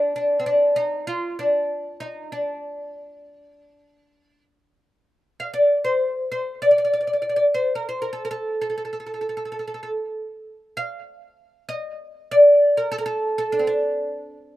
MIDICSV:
0, 0, Header, 1, 2, 480
1, 0, Start_track
1, 0, Tempo, 614754
1, 1804, Time_signature, 9, 3, 24, 8
1, 11374, End_track
2, 0, Start_track
2, 0, Title_t, "Oud"
2, 0, Program_c, 0, 24
2, 0, Note_on_c, 0, 62, 81
2, 114, Note_off_c, 0, 62, 0
2, 123, Note_on_c, 0, 62, 83
2, 306, Note_off_c, 0, 62, 0
2, 309, Note_on_c, 0, 60, 69
2, 358, Note_off_c, 0, 60, 0
2, 361, Note_on_c, 0, 62, 87
2, 590, Note_off_c, 0, 62, 0
2, 593, Note_on_c, 0, 63, 93
2, 834, Note_off_c, 0, 63, 0
2, 837, Note_on_c, 0, 65, 104
2, 1082, Note_off_c, 0, 65, 0
2, 1086, Note_on_c, 0, 62, 86
2, 1561, Note_off_c, 0, 62, 0
2, 1564, Note_on_c, 0, 63, 83
2, 1809, Note_off_c, 0, 63, 0
2, 1812, Note_on_c, 0, 62, 79
2, 3463, Note_off_c, 0, 62, 0
2, 4215, Note_on_c, 0, 77, 80
2, 4319, Note_off_c, 0, 77, 0
2, 4322, Note_on_c, 0, 74, 87
2, 4561, Note_off_c, 0, 74, 0
2, 4564, Note_on_c, 0, 72, 89
2, 4922, Note_off_c, 0, 72, 0
2, 4932, Note_on_c, 0, 72, 86
2, 5165, Note_off_c, 0, 72, 0
2, 5168, Note_on_c, 0, 74, 94
2, 5226, Note_off_c, 0, 74, 0
2, 5239, Note_on_c, 0, 74, 64
2, 5286, Note_off_c, 0, 74, 0
2, 5295, Note_on_c, 0, 74, 70
2, 5336, Note_off_c, 0, 74, 0
2, 5345, Note_on_c, 0, 74, 60
2, 5403, Note_off_c, 0, 74, 0
2, 5414, Note_on_c, 0, 74, 67
2, 5461, Note_off_c, 0, 74, 0
2, 5470, Note_on_c, 0, 74, 52
2, 5513, Note_off_c, 0, 74, 0
2, 5523, Note_on_c, 0, 74, 56
2, 5561, Note_off_c, 0, 74, 0
2, 5570, Note_on_c, 0, 74, 48
2, 5627, Note_off_c, 0, 74, 0
2, 5637, Note_on_c, 0, 74, 59
2, 5686, Note_off_c, 0, 74, 0
2, 5695, Note_on_c, 0, 74, 59
2, 5739, Note_off_c, 0, 74, 0
2, 5749, Note_on_c, 0, 74, 76
2, 5811, Note_off_c, 0, 74, 0
2, 5891, Note_on_c, 0, 72, 89
2, 6050, Note_off_c, 0, 72, 0
2, 6054, Note_on_c, 0, 70, 71
2, 6155, Note_off_c, 0, 70, 0
2, 6159, Note_on_c, 0, 72, 76
2, 6257, Note_off_c, 0, 72, 0
2, 6260, Note_on_c, 0, 70, 81
2, 6343, Note_off_c, 0, 70, 0
2, 6346, Note_on_c, 0, 69, 77
2, 6437, Note_off_c, 0, 69, 0
2, 6440, Note_on_c, 0, 70, 76
2, 6484, Note_off_c, 0, 70, 0
2, 6487, Note_on_c, 0, 69, 83
2, 6715, Note_off_c, 0, 69, 0
2, 6727, Note_on_c, 0, 69, 74
2, 6781, Note_off_c, 0, 69, 0
2, 6790, Note_on_c, 0, 69, 52
2, 6843, Note_off_c, 0, 69, 0
2, 6852, Note_on_c, 0, 69, 59
2, 6900, Note_off_c, 0, 69, 0
2, 6909, Note_on_c, 0, 69, 48
2, 6962, Note_off_c, 0, 69, 0
2, 6971, Note_on_c, 0, 69, 52
2, 7017, Note_off_c, 0, 69, 0
2, 7026, Note_on_c, 0, 69, 46
2, 7068, Note_off_c, 0, 69, 0
2, 7078, Note_on_c, 0, 69, 48
2, 7126, Note_off_c, 0, 69, 0
2, 7135, Note_on_c, 0, 69, 41
2, 7183, Note_off_c, 0, 69, 0
2, 7192, Note_on_c, 0, 69, 49
2, 7245, Note_off_c, 0, 69, 0
2, 7254, Note_on_c, 0, 69, 46
2, 7306, Note_off_c, 0, 69, 0
2, 7315, Note_on_c, 0, 69, 55
2, 7372, Note_off_c, 0, 69, 0
2, 7381, Note_on_c, 0, 69, 46
2, 7422, Note_off_c, 0, 69, 0
2, 7432, Note_on_c, 0, 69, 54
2, 7480, Note_off_c, 0, 69, 0
2, 7489, Note_on_c, 0, 69, 49
2, 7545, Note_off_c, 0, 69, 0
2, 7554, Note_on_c, 0, 69, 61
2, 7597, Note_off_c, 0, 69, 0
2, 7606, Note_on_c, 0, 69, 49
2, 7664, Note_off_c, 0, 69, 0
2, 7674, Note_on_c, 0, 69, 58
2, 7730, Note_off_c, 0, 69, 0
2, 8409, Note_on_c, 0, 77, 110
2, 9121, Note_off_c, 0, 77, 0
2, 9125, Note_on_c, 0, 75, 101
2, 9612, Note_off_c, 0, 75, 0
2, 9615, Note_on_c, 0, 74, 101
2, 9946, Note_off_c, 0, 74, 0
2, 9974, Note_on_c, 0, 70, 88
2, 10081, Note_off_c, 0, 70, 0
2, 10084, Note_on_c, 0, 69, 94
2, 10135, Note_off_c, 0, 69, 0
2, 10138, Note_on_c, 0, 70, 83
2, 10192, Note_off_c, 0, 70, 0
2, 10195, Note_on_c, 0, 69, 96
2, 10439, Note_off_c, 0, 69, 0
2, 10449, Note_on_c, 0, 69, 91
2, 10559, Note_on_c, 0, 62, 84
2, 10570, Note_off_c, 0, 69, 0
2, 10613, Note_off_c, 0, 62, 0
2, 10614, Note_on_c, 0, 60, 66
2, 10671, Note_off_c, 0, 60, 0
2, 10675, Note_on_c, 0, 62, 86
2, 11219, Note_off_c, 0, 62, 0
2, 11374, End_track
0, 0, End_of_file